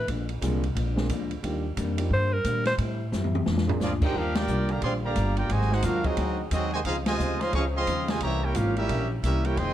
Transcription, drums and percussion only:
0.08 kick soft
0.08 ride medium
0.29 ride medium
0.42 kick soft
0.42 hi-hat pedal medium
0.42 ride medium
0.64 ride medium
0.76 kick soft
0.76 ride medium
0.97 snare medium
1.09 kick soft
1.09 hi-hat pedal medium
1.09 ride medium
1.31 ride medium
1.43 kick soft
1.43 ride medium
1.77 kick soft
1.77 hi-hat pedal medium
1.77 ride medium
1.98 ride medium
2.11 kick soft
2.45 kick soft
2.45 hi-hat pedal medium
2.45 ride medium
2.65 snare medium
2.65 ride medium
2.78 kick soft
2.78 ride medium
3.13 snare medium
3.13 hi-hat pedal medium
3.24 high tom medium
3.35 high tom medium
3.46 snare medium
3.58 snare medium
3.69 floor tom loud
3.81 snare medium
3.81 hi-hat pedal medium
4.02 kick medium
4.02 crash medium
4.14 kick soft
4.35 snare loud
4.35 ride medium
4.48 hi-hat pedal medium
4.69 ride soft
4.82 kick soft
4.82 ride medium
5.16 kick soft
5.16 hi-hat pedal medium
5.16 ride medium
5.37 ride medium
5.50 kick soft
5.50 ride medium
5.61 snare soft
5.72 snare medium
5.82 kick soft
5.82 snare soft
5.82 hi-hat pedal medium
5.82 ride medium
6.04 kick medium
6.04 ride medium
6.17 kick soft
6.17 ride medium
6.51 kick soft
6.51 hi-hat pedal medium
6.51 ride medium
6.85 kick soft
6.85 ride medium
7.06 snare medium
7.06 ride medium
7.20 hi-hat pedal medium
7.41 snare soft
7.41 ride medium
7.53 kick soft
7.53 ride medium
7.87 kick soft
7.87 hi-hat pedal medium
7.87 ride medium
8.08 snare medium
8.08 ride medium
8.20 kick soft
8.20 ride medium
8.55 kick soft
8.55 hi-hat pedal medium
8.55 ride medium
8.77 ride medium
8.89 kick soft
8.89 ride medium
9.23 kick soft
9.23 hi-hat pedal medium
9.23 ride medium
9.45 ride medium
9.57 kick soft
9.57 ride medium

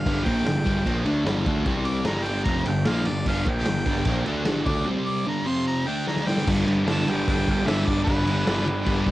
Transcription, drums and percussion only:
0.06 kick loud
0.06 crash loud
0.26 kick loud
0.26 ride medium
0.46 snare loud
0.46 ride loud
0.66 kick loud
0.66 ride medium
0.86 kick loud
0.86 ride medium
1.06 ride medium
1.27 snare loud
1.27 ride loud
1.46 kick loud
1.46 ride medium
1.66 kick loud
1.66 ride loud
1.85 ride medium
2.05 snare loud
2.05 ride medium
2.26 ride medium
2.45 kick loud
2.45 ride medium
2.55 snare soft
2.65 ride medium
2.85 snare loud
2.85 ride loud
3.05 ride medium
3.26 kick loud
3.26 crash loud
3.46 kick loud
3.46 ride medium
3.66 snare loud
3.66 ride loud
3.86 kick loud
3.86 ride medium
4.05 kick loud
4.05 ride loud
4.26 ride medium
4.45 snare loud
4.45 ride loud
4.66 kick loud
4.66 ride medium
6.07 snare medium
6.16 snare medium
6.27 snare medium
6.37 snare medium
6.47 kick loud
6.47 crash loud
6.47 crash medium
6.68 crash medium
6.88 snare loud
6.88 crash loud
6.98 snare soft
7.08 snare soft
7.08 crash medium
7.28 kick loud
7.28 crash medium
7.48 kick medium
7.48 crash medium
7.68 snare loud
7.68 crash loud
7.88 kick loud
7.88 crash medium
8.07 kick loud
8.07 crash medium
8.27 crash medium
8.47 snare loud
8.47 crash medium
8.67 crash medium
8.86 kick loud
8.86 crash loud
9.07 kick medium
9.07 crash medium

